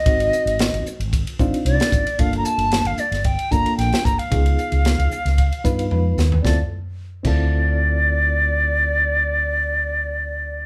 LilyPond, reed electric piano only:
\new Staff \with { instrumentName = "Reed electric piano" } { \time 4/4 \key d \minor \tempo 4 = 113 << { r1 | r1 | r2. b'4 | r1 |
r1 | } \\ { <bis dis' fis'>4. r4 <bis d' dis' f'>4 r8 | <bes d' f' a'>4. r4 <bes d' f' a'>4 r8 | <b dis' eis' gis'>4. r4 <b dis' eis' b'>4 r8 | <c' e' f' a'>8 r4 <c' e' f' a'>2~ <c' e' f' a'>8~ |
<c' e' f' a'>1 | } >> }